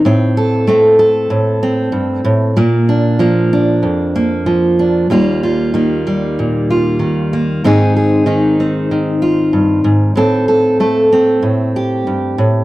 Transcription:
\new Staff \with { instrumentName = "Steel-string acoustic guitar" } { \time 4/4 \key ees \major \tempo 4 = 95 << { c'8 a'8 c'8 a'4 c'4. | bes8 d'8 bes8 d'4 bes4 d'8 | <g bes f'>8 f'8 bes8 g4 f'4 bes8 | <c' ees' aes'>8 aes'8 ees'8 c'4 f'4. |
<c' a'>8 a'8 a'8 c'4 g'4. | } \\ { a,4 a4 a,4 g,8 a,8 | bes,4 f4 f,4 f4 | ees,4 ees4 bes,4 ees4 | aes,4 ees4 ees4 g,8 aes,8 |
a,4 a4 a,4 g,8 a,8 | } >> }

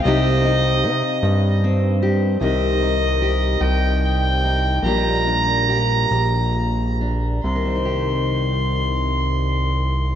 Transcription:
<<
  \new Staff \with { instrumentName = "Fiddle" } { \time 6/8 \key c \minor \tempo 4. = 48 ees''2 r4 | ees''4. g''8 g''4 | bes''2~ bes''8 r8 | c'''2. | }
  \new Staff \with { instrumentName = "Steel-string acoustic guitar" } { \time 6/8 \key c \minor << { <c' ees' g'>8 ees'4. c'8 g'8 | <ees c' ees' g'>8 ees'8 g'4. ees'8 | <g bes d' g'>8 d'8 g'4. d'8 | <ees c' ees' g'>2. | } \\ { c4. r4. | c4. r4. | bes,4. r4. | c2. | } >> }
  \new Staff \with { instrumentName = "Analog synth bass" } { \clef bass \time 6/8 \key c \minor c,4 c16 r16 g,4. | c,4. c,4. | bes,,4. bes,,4. | c,2. | }
>>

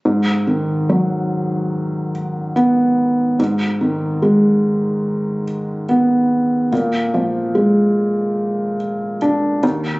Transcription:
\new Staff \with { instrumentName = "Felt piano" } { \clef bass \time 4/4 \key gis \minor \tempo 4 = 72 gis,8 dis8 fis2 b4 | gis,8 dis8 gis2 b4 | ais,8 eis8 gis2 d'8 dis,8 | }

